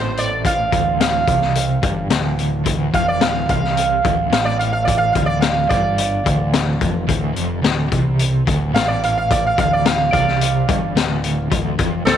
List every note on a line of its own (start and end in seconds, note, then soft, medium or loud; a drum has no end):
0.00 0.68 A1 loud
0.00 0.70 A2 loud
0.00 0.18 C5 loud
0.17 0.44 D5 medium
0.17 closed hi-hat medium
0.45 0.99 F5 medium
0.45 kick medium
0.45 closed hi-hat medium
0.71 1.24 D1 medium
0.71 1.26 D2 loud
0.71 kick loud
0.71 closed hi-hat medium
1.01 2.08 F5 medium
1.01 snare loud
1.01 closed hi-hat medium
1.26 1.79 C2 medium
1.26 1.81 C3 loud
1.26 kick medium
1.26 closed hi-hat medium
1.41 snare soft
1.55 closed hi-hat medium
1.82 2.09 G1 medium
1.82 2.09 G2 loud
1.82 kick loud
1.82 closed hi-hat medium
2.10 2.62 D1 medium
2.10 2.63 D2 medium
2.10 snare loud
2.10 closed hi-hat loud
2.39 closed hi-hat medium
2.64 2.92 D1 loud
2.64 2.92 D2 loud
2.64 kick medium
2.64 closed hi-hat medium
2.92 3.19 F1 medium
2.92 3.20 F2 medium
2.92 3.07 F5 loud
2.92 kick medium
2.92 closed hi-hat medium
3.08 3.21 D5 medium
3.20 3.47 D1 medium
3.20 3.47 D2 loud
3.20 3.49 F5 loud
3.20 snare loud
3.20 closed hi-hat medium
3.48 4.00 C2 loud
3.48 4.02 C3 loud
3.48 4.03 F5 loud
3.48 kick loud
3.48 closed hi-hat medium
3.64 snare soft
3.77 closed hi-hat medium
4.03 4.30 D1 medium
4.03 4.30 D2 loud
4.03 kick loud
4.03 closed hi-hat medium
4.30 5.11 A1 medium
4.30 5.13 A2 loud
4.30 4.45 F5 medium
4.30 snare loud
4.30 closed hi-hat medium
4.45 4.58 D5 loud
4.59 4.71 F5 medium
4.59 closed hi-hat medium
4.73 4.84 F5 medium
4.85 4.97 D5 medium
4.85 kick medium
4.85 closed hi-hat medium
4.98 5.11 F5 loud
5.12 5.67 D1 medium
5.12 5.68 D2 medium
5.12 5.26 F5 loud
5.12 kick medium
5.12 closed hi-hat medium
5.26 5.40 D5 loud
5.41 5.69 F5 medium
5.41 snare loud
5.41 closed hi-hat medium
5.69 6.22 G1 medium
5.69 6.24 G2 loud
5.69 7.32 D5 loud
5.69 kick loud
5.69 closed hi-hat medium
5.98 closed hi-hat loud
6.24 6.77 D1 medium
6.24 6.79 D2 medium
6.24 kick loud
6.24 closed hi-hat medium
6.53 snare loud
6.53 closed hi-hat loud
6.79 7.07 F1 loud
6.79 7.07 F2 medium
6.79 kick loud
6.79 closed hi-hat medium
7.07 7.34 D1 medium
7.07 7.34 D2 loud
7.07 kick medium
7.07 closed hi-hat medium
7.34 7.62 F1 medium
7.34 7.62 F2 loud
7.34 closed hi-hat medium
7.62 7.90 D1 medium
7.62 7.89 D2 loud
7.62 snare loud
7.62 closed hi-hat medium
7.90 8.43 C2 medium
7.90 8.45 C3 loud
7.90 kick medium
7.90 closed hi-hat medium
8.19 closed hi-hat medium
8.45 8.73 D1 medium
8.45 8.73 D2 loud
8.45 kick loud
8.45 closed hi-hat medium
8.73 9.54 A1 medium
8.73 9.56 A2 loud
8.73 8.88 F5 loud
8.73 snare loud
8.73 closed hi-hat medium
8.88 9.01 D5 medium
9.03 9.16 F5 medium
9.03 closed hi-hat medium
9.18 9.30 F5 medium
9.31 9.44 D5 medium
9.31 kick loud
9.31 closed hi-hat medium
9.46 9.58 F5 medium
9.57 10.10 D1 medium
9.57 10.11 D2 loud
9.57 9.72 F5 loud
9.57 kick loud
9.57 closed hi-hat medium
9.73 9.85 D5 medium
9.86 10.11 F5 medium
9.86 snare loud
9.86 closed hi-hat loud
10.11 10.65 C2 loud
10.11 10.67 C3 loud
10.11 11.75 D5 medium
10.11 11.75 F5 loud
10.11 kick loud
10.11 closed hi-hat medium
10.28 snare soft
10.41 closed hi-hat loud
10.68 10.95 G1 medium
10.68 10.95 G2 loud
10.68 kick loud
10.68 closed hi-hat medium
10.95 11.47 D1 loud
10.95 11.49 D2 loud
10.95 snare loud
10.95 closed hi-hat loud
11.24 closed hi-hat medium
11.50 11.78 D1 medium
11.50 11.78 D2 loud
11.50 kick medium
11.50 closed hi-hat medium
11.78 12.05 F1 medium
11.78 12.05 F2 loud
11.78 kick loud
11.78 closed hi-hat medium
12.05 12.17 D1 loud
12.05 12.17 D2 medium
12.05 12.17 A4 loud
12.05 12.17 C5 loud
12.05 snare loud
12.05 closed hi-hat medium